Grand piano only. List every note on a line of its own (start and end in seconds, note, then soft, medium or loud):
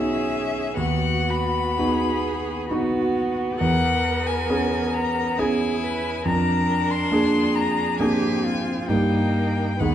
0.00 0.80 B3 soft
0.00 0.79 D#4 soft
0.00 0.80 F#4 soft
0.77 1.76 D#2 soft
1.79 2.66 B3 soft
1.79 2.67 D#4 soft
1.79 2.67 F#4 soft
2.71 3.57 B3 soft
2.71 3.56 D#4 soft
2.71 3.57 F#4 soft
3.61 4.47 E2 medium
4.49 5.35 B3 soft
4.49 5.35 C#4 soft
4.49 5.35 G#4 soft
5.39 6.22 B3 soft
5.39 6.22 C#4 soft
5.39 6.23 G#4 soft
6.25 7.09 F2 medium
7.11 7.96 A#3 soft
7.11 7.96 D4 soft
7.11 7.97 G#4 soft
8.00 8.85 A#3 soft
8.00 8.85 D4 soft
8.00 8.85 G#4 soft
8.89 9.77 G2 soft
8.89 9.76 A#3 soft
8.89 9.76 D#4 soft
8.89 9.77 G4 soft
9.80 9.95 D#2 soft
9.80 9.95 B3 soft
9.80 9.95 D#4 soft
9.80 9.95 G#4 soft